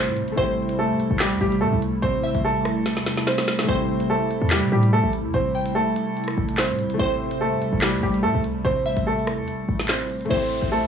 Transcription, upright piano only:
0, 0, Header, 1, 2, 480
1, 0, Start_track
1, 0, Key_signature, 0, "minor"
1, 0, Tempo, 413793
1, 435, Time_signature, 4, 2, 24, 8
1, 12609, End_track
2, 0, Start_track
2, 0, Title_t, "Upright piano"
2, 0, Program_c, 0, 0
2, 0, Note_on_c, 0, 60, 66
2, 0, Note_on_c, 0, 72, 86
2, 404, Note_off_c, 0, 72, 0
2, 409, Note_off_c, 0, 60, 0
2, 435, Note_on_c, 0, 72, 100
2, 444, Note_on_c, 0, 60, 81
2, 886, Note_off_c, 0, 72, 0
2, 891, Note_off_c, 0, 60, 0
2, 913, Note_on_c, 0, 69, 85
2, 922, Note_on_c, 0, 57, 68
2, 1365, Note_off_c, 0, 69, 0
2, 1370, Note_off_c, 0, 57, 0
2, 1392, Note_on_c, 0, 67, 82
2, 1401, Note_on_c, 0, 55, 69
2, 1581, Note_off_c, 0, 67, 0
2, 1587, Note_off_c, 0, 55, 0
2, 1633, Note_on_c, 0, 67, 81
2, 1643, Note_on_c, 0, 55, 58
2, 1822, Note_off_c, 0, 67, 0
2, 1828, Note_off_c, 0, 55, 0
2, 1865, Note_on_c, 0, 69, 84
2, 1875, Note_on_c, 0, 57, 70
2, 2057, Note_off_c, 0, 69, 0
2, 2063, Note_off_c, 0, 57, 0
2, 2347, Note_on_c, 0, 72, 105
2, 2356, Note_on_c, 0, 60, 81
2, 2802, Note_off_c, 0, 72, 0
2, 2807, Note_off_c, 0, 60, 0
2, 2837, Note_on_c, 0, 69, 85
2, 2846, Note_on_c, 0, 57, 63
2, 3750, Note_off_c, 0, 69, 0
2, 3754, Note_off_c, 0, 57, 0
2, 3791, Note_on_c, 0, 72, 82
2, 3800, Note_on_c, 0, 60, 70
2, 4244, Note_off_c, 0, 72, 0
2, 4249, Note_off_c, 0, 60, 0
2, 4275, Note_on_c, 0, 72, 98
2, 4283, Note_on_c, 0, 60, 80
2, 4726, Note_off_c, 0, 72, 0
2, 4731, Note_off_c, 0, 60, 0
2, 4753, Note_on_c, 0, 69, 88
2, 4763, Note_on_c, 0, 57, 66
2, 5205, Note_off_c, 0, 69, 0
2, 5211, Note_off_c, 0, 57, 0
2, 5238, Note_on_c, 0, 67, 94
2, 5247, Note_on_c, 0, 55, 67
2, 5425, Note_off_c, 0, 67, 0
2, 5430, Note_off_c, 0, 55, 0
2, 5479, Note_on_c, 0, 67, 80
2, 5488, Note_on_c, 0, 55, 64
2, 5666, Note_off_c, 0, 67, 0
2, 5671, Note_off_c, 0, 55, 0
2, 5718, Note_on_c, 0, 69, 89
2, 5727, Note_on_c, 0, 57, 64
2, 5905, Note_off_c, 0, 69, 0
2, 5910, Note_off_c, 0, 57, 0
2, 6194, Note_on_c, 0, 72, 99
2, 6204, Note_on_c, 0, 60, 76
2, 6646, Note_off_c, 0, 72, 0
2, 6651, Note_off_c, 0, 60, 0
2, 6670, Note_on_c, 0, 69, 90
2, 6679, Note_on_c, 0, 57, 67
2, 7586, Note_off_c, 0, 69, 0
2, 7591, Note_off_c, 0, 57, 0
2, 7631, Note_on_c, 0, 72, 84
2, 7640, Note_on_c, 0, 60, 64
2, 8084, Note_off_c, 0, 72, 0
2, 8089, Note_off_c, 0, 60, 0
2, 8113, Note_on_c, 0, 72, 100
2, 8123, Note_on_c, 0, 60, 78
2, 8565, Note_off_c, 0, 72, 0
2, 8571, Note_off_c, 0, 60, 0
2, 8593, Note_on_c, 0, 69, 83
2, 8603, Note_on_c, 0, 57, 69
2, 9045, Note_off_c, 0, 69, 0
2, 9051, Note_off_c, 0, 57, 0
2, 9075, Note_on_c, 0, 67, 81
2, 9083, Note_on_c, 0, 55, 68
2, 9263, Note_off_c, 0, 67, 0
2, 9268, Note_off_c, 0, 55, 0
2, 9315, Note_on_c, 0, 67, 82
2, 9325, Note_on_c, 0, 55, 61
2, 9503, Note_off_c, 0, 67, 0
2, 9509, Note_off_c, 0, 55, 0
2, 9545, Note_on_c, 0, 69, 88
2, 9554, Note_on_c, 0, 57, 68
2, 9737, Note_off_c, 0, 69, 0
2, 9742, Note_off_c, 0, 57, 0
2, 10029, Note_on_c, 0, 72, 103
2, 10039, Note_on_c, 0, 60, 83
2, 10483, Note_off_c, 0, 72, 0
2, 10488, Note_off_c, 0, 60, 0
2, 10519, Note_on_c, 0, 69, 85
2, 10529, Note_on_c, 0, 57, 65
2, 11431, Note_off_c, 0, 69, 0
2, 11436, Note_off_c, 0, 57, 0
2, 11471, Note_on_c, 0, 72, 84
2, 11480, Note_on_c, 0, 60, 69
2, 11924, Note_off_c, 0, 72, 0
2, 11929, Note_off_c, 0, 60, 0
2, 11956, Note_on_c, 0, 72, 92
2, 11964, Note_on_c, 0, 60, 76
2, 12407, Note_off_c, 0, 72, 0
2, 12411, Note_off_c, 0, 60, 0
2, 12433, Note_on_c, 0, 69, 83
2, 12442, Note_on_c, 0, 57, 64
2, 12609, Note_off_c, 0, 57, 0
2, 12609, Note_off_c, 0, 69, 0
2, 12609, End_track
0, 0, End_of_file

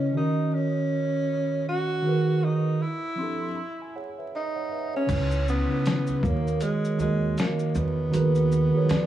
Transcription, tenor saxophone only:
0, 0, Header, 1, 2, 480
1, 0, Start_track
1, 0, Tempo, 759494
1, 1296, Time_signature, 4, 2, 24, 8
1, 5728, End_track
2, 0, Start_track
2, 0, Title_t, "Tenor saxophone"
2, 0, Program_c, 0, 66
2, 0, Note_on_c, 0, 61, 80
2, 101, Note_off_c, 0, 61, 0
2, 107, Note_on_c, 0, 63, 91
2, 342, Note_on_c, 0, 61, 94
2, 351, Note_off_c, 0, 63, 0
2, 1059, Note_off_c, 0, 61, 0
2, 1065, Note_on_c, 0, 66, 107
2, 1542, Note_on_c, 0, 63, 89
2, 1552, Note_off_c, 0, 66, 0
2, 1785, Note_on_c, 0, 64, 96
2, 1795, Note_off_c, 0, 63, 0
2, 2584, Note_off_c, 0, 64, 0
2, 2754, Note_on_c, 0, 63, 91
2, 3105, Note_off_c, 0, 63, 0
2, 3137, Note_on_c, 0, 61, 99
2, 3441, Note_off_c, 0, 61, 0
2, 3472, Note_on_c, 0, 59, 102
2, 3942, Note_on_c, 0, 58, 98
2, 3951, Note_off_c, 0, 59, 0
2, 4183, Note_on_c, 0, 56, 91
2, 4192, Note_off_c, 0, 58, 0
2, 4419, Note_off_c, 0, 56, 0
2, 4425, Note_on_c, 0, 56, 88
2, 4666, Note_on_c, 0, 58, 85
2, 4676, Note_off_c, 0, 56, 0
2, 4908, Note_on_c, 0, 59, 99
2, 4918, Note_off_c, 0, 58, 0
2, 5728, Note_off_c, 0, 59, 0
2, 5728, End_track
0, 0, End_of_file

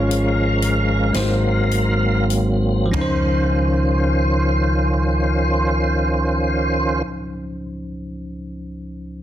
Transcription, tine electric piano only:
0, 0, Header, 1, 2, 480
1, 0, Start_track
1, 0, Key_signature, -5, "major"
1, 0, Tempo, 1008403
1, 292, Tempo, 1088929
1, 772, Tempo, 1232033
1, 1251, Time_signature, 6, 3, 24, 8
1, 1252, Tempo, 1315789
1, 3548, End_track
2, 0, Start_track
2, 0, Title_t, "Tine electric piano"
2, 0, Program_c, 0, 4
2, 0, Control_c, 0, 64, 127
2, 0, Note_on_c, 0, 44, 62
2, 0, Note_on_c, 0, 56, 80
2, 0, Note_on_c, 0, 61, 71
2, 0, Note_on_c, 0, 65, 71
2, 0, Note_on_c, 0, 73, 85
2, 309, Note_off_c, 0, 56, 0
2, 312, Note_off_c, 0, 61, 0
2, 318, Note_off_c, 0, 73, 0
2, 328, Note_off_c, 0, 65, 0
2, 509, Note_off_c, 0, 44, 0
2, 520, Note_on_c, 0, 56, 61
2, 526, Note_on_c, 0, 63, 58
2, 528, Note_on_c, 0, 44, 58
2, 530, Control_c, 0, 64, 0
2, 531, Note_on_c, 0, 66, 58
2, 538, Note_on_c, 0, 72, 70
2, 602, Control_c, 0, 64, 127
2, 1022, Note_off_c, 0, 56, 0
2, 1024, Note_off_c, 0, 63, 0
2, 1026, Note_off_c, 0, 66, 0
2, 1030, Note_off_c, 0, 72, 0
2, 1222, Note_on_c, 0, 53, 63
2, 1237, Note_off_c, 0, 44, 0
2, 1244, Note_on_c, 0, 61, 59
2, 1253, Note_on_c, 0, 37, 61
2, 1256, Control_c, 0, 64, 0
2, 1263, Note_on_c, 0, 63, 56
2, 1281, Note_on_c, 0, 72, 70
2, 1317, Control_c, 0, 64, 127
2, 2707, Note_off_c, 0, 53, 0
2, 2728, Note_off_c, 0, 61, 0
2, 2736, Note_off_c, 0, 37, 0
2, 2746, Note_off_c, 0, 63, 0
2, 2764, Note_off_c, 0, 72, 0
2, 3548, End_track
0, 0, End_of_file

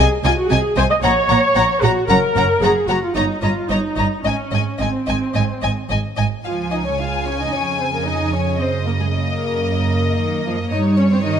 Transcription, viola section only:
0, 0, Header, 1, 2, 480
1, 0, Start_track
1, 0, Key_signature, -5, "major"
1, 0, Tempo, 531444
1, 1897, Time_signature, 4, 2, 24, 8
1, 2860, Tempo, 544959
1, 6700, Tempo, 532387
1, 10191, End_track
2, 0, Start_track
2, 0, Title_t, "Viola section"
2, 0, Program_c, 0, 48
2, 225, Note_on_c, 0, 65, 88
2, 272, Note_off_c, 0, 65, 0
2, 348, Note_on_c, 0, 66, 75
2, 458, Note_on_c, 0, 68, 87
2, 461, Note_off_c, 0, 66, 0
2, 695, Note_on_c, 0, 72, 88
2, 697, Note_off_c, 0, 68, 0
2, 743, Note_off_c, 0, 72, 0
2, 818, Note_on_c, 0, 75, 75
2, 865, Note_off_c, 0, 75, 0
2, 932, Note_on_c, 0, 73, 93
2, 1640, Note_off_c, 0, 73, 0
2, 1655, Note_on_c, 0, 66, 82
2, 1893, Note_on_c, 0, 70, 91
2, 1896, Note_off_c, 0, 66, 0
2, 2365, Note_off_c, 0, 70, 0
2, 2371, Note_on_c, 0, 68, 81
2, 2614, Note_off_c, 0, 68, 0
2, 2616, Note_on_c, 0, 66, 71
2, 2737, Note_off_c, 0, 66, 0
2, 2742, Note_on_c, 0, 65, 63
2, 2851, Note_on_c, 0, 63, 67
2, 2859, Note_off_c, 0, 65, 0
2, 3087, Note_off_c, 0, 63, 0
2, 3093, Note_on_c, 0, 65, 65
2, 3328, Note_off_c, 0, 65, 0
2, 3332, Note_on_c, 0, 63, 71
2, 3813, Note_on_c, 0, 61, 73
2, 3815, Note_off_c, 0, 63, 0
2, 4288, Note_off_c, 0, 61, 0
2, 4297, Note_on_c, 0, 60, 58
2, 5267, Note_off_c, 0, 60, 0
2, 5754, Note_on_c, 0, 65, 48
2, 5974, Note_off_c, 0, 65, 0
2, 5995, Note_on_c, 0, 63, 47
2, 6109, Note_off_c, 0, 63, 0
2, 6111, Note_on_c, 0, 61, 45
2, 6226, Note_off_c, 0, 61, 0
2, 6232, Note_on_c, 0, 65, 48
2, 6462, Note_on_c, 0, 61, 50
2, 6466, Note_off_c, 0, 65, 0
2, 6581, Note_off_c, 0, 61, 0
2, 6595, Note_on_c, 0, 63, 45
2, 6694, Note_on_c, 0, 61, 48
2, 6706, Note_off_c, 0, 63, 0
2, 6937, Note_off_c, 0, 61, 0
2, 6942, Note_on_c, 0, 60, 45
2, 6989, Note_off_c, 0, 60, 0
2, 7066, Note_on_c, 0, 58, 50
2, 7181, Note_off_c, 0, 58, 0
2, 7181, Note_on_c, 0, 63, 56
2, 7417, Note_on_c, 0, 61, 48
2, 7421, Note_off_c, 0, 63, 0
2, 7659, Note_on_c, 0, 60, 55
2, 7661, Note_off_c, 0, 61, 0
2, 7731, Note_off_c, 0, 60, 0
2, 7901, Note_on_c, 0, 58, 52
2, 7950, Note_off_c, 0, 58, 0
2, 8033, Note_on_c, 0, 56, 47
2, 8148, Note_off_c, 0, 56, 0
2, 8150, Note_on_c, 0, 58, 55
2, 9557, Note_off_c, 0, 58, 0
2, 9583, Note_on_c, 0, 63, 63
2, 9821, Note_off_c, 0, 63, 0
2, 9825, Note_on_c, 0, 61, 61
2, 9872, Note_off_c, 0, 61, 0
2, 9945, Note_on_c, 0, 60, 56
2, 9991, Note_off_c, 0, 60, 0
2, 10057, Note_on_c, 0, 63, 62
2, 10191, Note_off_c, 0, 63, 0
2, 10191, End_track
0, 0, End_of_file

